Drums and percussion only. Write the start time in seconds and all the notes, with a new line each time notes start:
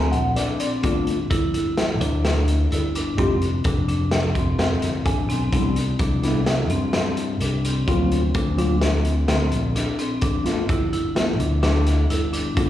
0.13 closed hi-hat
0.36 snare, closed hi-hat
0.60 closed hi-hat
0.83 kick, closed hi-hat
1.07 closed hi-hat
1.31 kick, closed hi-hat
1.54 closed hi-hat
1.77 snare, closed hi-hat
2.01 closed hi-hat
2.25 snare, closed hi-hat
2.48 closed hi-hat
2.72 closed hi-hat
2.95 closed hi-hat
3.18 kick, closed hi-hat
3.42 closed hi-hat
3.64 kick, closed hi-hat
3.89 closed hi-hat
4.11 snare, closed hi-hat
4.35 kick, closed hi-hat
4.59 snare, closed hi-hat
4.82 snare, closed hi-hat
5.06 kick, closed hi-hat
5.30 closed hi-hat
5.52 kick, closed hi-hat
5.76 closed hi-hat
5.99 kick, closed hi-hat
6.23 snare, closed hi-hat
6.46 snare, closed hi-hat
6.70 closed hi-hat
6.93 snare, closed hi-hat
7.17 closed hi-hat
7.41 closed hi-hat
7.65 closed hi-hat
7.88 kick, closed hi-hat
8.12 closed hi-hat
8.34 kick, closed hi-hat
8.58 closed hi-hat
8.81 snare, closed hi-hat
9.05 closed hi-hat
9.28 snare, closed hi-hat
9.52 closed hi-hat
9.76 snare, closed hi-hat
9.99 closed hi-hat
10.21 kick, closed hi-hat
10.46 snare, closed hi-hat
10.69 kick, closed hi-hat
10.93 closed hi-hat
11.16 snare, closed hi-hat
11.40 closed hi-hat
11.63 snare, closed hi-hat
11.87 snare, closed hi-hat
12.10 closed hi-hat
12.33 closed hi-hat
12.57 kick, closed hi-hat